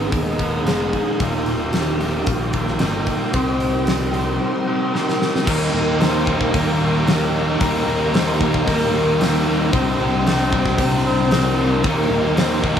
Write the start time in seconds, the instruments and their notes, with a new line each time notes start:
Already playing: overdriven electric guitar G#2 D#3 G#3 B3 D#4, ambient pad B3 D#4 G#5 D#6, twelve-string acoustic guitar B4
0.11 fingered electric bass D#2, twelve-string acoustic guitar A#4, kick, open hi-hat
0.38 overdriven electric guitar G#2 D#3 G#3 B3 D#4, kick, open hi-hat
0.65 fingered electric bass F1, overdriven electric guitar G#2 D#3 G#3 B3 D#4, twelve-string acoustic guitar G#4, snare, open hi-hat
0.93 kick, open hi-hat
1.19 fingered electric bass D#1, overdriven electric guitar D#2 A#2 D#3 G3 A#3 D#4, twelve-string acoustic guitar F4, ambient pad F4 A#4 G5, kick, open hi-hat
1.46 open hi-hat
1.72 twelve-string acoustic guitar G4, snare, open hi-hat
2.00 overdriven electric guitar D#2 A#2 D#3 G3 A#3 D#4, open hi-hat
2.27 fingered electric bass A#1, twelve-string acoustic guitar F4, kick, open hi-hat
2.53 overdriven electric guitar D#2 A#2 D#3 G3 A#3 D#4, kick, open hi-hat
2.67 snare
2.79 fingered electric bass G1, overdriven electric guitar D#2 A#2 D#3 G3 A#3, twelve-string acoustic guitar D#4, snare, open hi-hat
2.83 overdriven electric guitar D#4
3.06 kick, open hi-hat
3.33 fingered electric bass C2, overdriven electric guitar C3 G3 C4 D#4 G4, ambient pad D#4 C6, twelve-string acoustic guitar C5, kick, open hi-hat
3.60 open hi-hat
3.86 twelve-string acoustic guitar D5, snare, open hi-hat
4.13 overdriven electric guitar C3 G3 C4 D#4 G4, open hi-hat
4.40 twelve-string acoustic guitar C5
4.67 overdriven electric guitar C3 G3 C4 D#4 G4
4.93 overdriven electric guitar C3 G3 C4 D#4 G4, twelve-string acoustic guitar A#4, snare
5.09 snare
5.22 snare
5.35 snare
5.45 overdriven electric guitar D#2 A#2 D#3 G3 A#3 D#4, fingered electric bass D#2, ambient pad A#4 G5 A#5, twelve-string acoustic guitar A#4, kick, crash
5.73 fingered electric bass D#2, overdriven electric guitar D#3 G3 A#3 D#4
6.00 overdriven electric guitar D#2 A#2 D#3 G3 A#3 D#4, twelve-string acoustic guitar C5, snare, open hi-hat
6.26 distorted electric guitar D#2 A#2, overdriven electric guitar D#3 G3 A#3 D#4, kick
6.41 kick
6.53 overdriven electric guitar D#2 A#2 D#3 G3 A#3 D#4, fingered electric bass D#2, twelve-string acoustic guitar A#4, kick, open hi-hat
6.81 overdriven electric guitar D#3 G3 A#3 D#4
7.07 overdriven electric guitar D#3 G3 A#3 D#4, twelve-string acoustic guitar G4, snare, open hi-hat
7.34 overdriven electric guitar D#3 G3 A#3 D#4
7.60 overdriven electric guitar D#2 A#2 D#3 G3 A#3 D#4, fingered electric bass D#2, twelve-string acoustic guitar A#4, kick, open hi-hat
7.87 fingered electric bass D#2, overdriven electric guitar D#3 G3 A#3 D#4
8.13 overdriven electric guitar D#2 A#2 D#3 G3 A#3 D#4, twelve-string acoustic guitar C5, snare, open hi-hat
8.41 distorted electric guitar D#2 A#2, overdriven electric guitar D#3 G3 A#3 D#4, kick
8.54 kick
8.67 fingered electric bass D#2, overdriven electric guitar D#2 A#2 D#3 G3 A#3 D#4, twelve-string acoustic guitar A#4, kick, open hi-hat
8.94 overdriven electric guitar D#3 G3 A#3 D#4
9.19 overdriven electric guitar D#3 G3 A#3 D#4, twelve-string acoustic guitar G4, snare, open hi-hat
9.46 overdriven electric guitar D#3 G3 A#3 D#4
9.71 fingered electric bass C2, overdriven electric guitar C3 G3 C4 D4, ambient pad C5 D5, twelve-string acoustic guitar C5, kick, open hi-hat
9.76 overdriven electric guitar D#4
9.99 fingered electric bass C2, overdriven electric guitar C4 D4 D#4
10.26 overdriven electric guitar C3 G3 C4 D4 D#4, twelve-string acoustic guitar D5, snare, open hi-hat
10.52 distorted electric guitar C3 G3, overdriven electric guitar C4 D4 D#4, kick
10.66 kick, snare
10.78 fingered electric bass C2, overdriven electric guitar C3 G3 C4 D4 D#4, twelve-string acoustic guitar C5, kick, open hi-hat
11.06 overdriven electric guitar C4
11.31 overdriven electric guitar G3 C4 D4 D#4, twelve-string acoustic guitar A#4, snare, open hi-hat
11.57 overdriven electric guitar C4 D4 D#4
11.84 fingered electric bass D#2, overdriven electric guitar D#2 A#2 D#3 G3 A#3 D#4, ambient pad G4 A#4, twelve-string acoustic guitar A#4, kick, open hi-hat
12.10 fingered electric bass D#2, overdriven electric guitar D#3 G3 A#3 D#4
12.35 overdriven electric guitar D#2 A#2 D#3 G3 A#3 D#4, twelve-string acoustic guitar C5, snare, open hi-hat
12.62 distorted electric guitar D#2 A#2, overdriven electric guitar D#3 G3 A#3 D#4, kick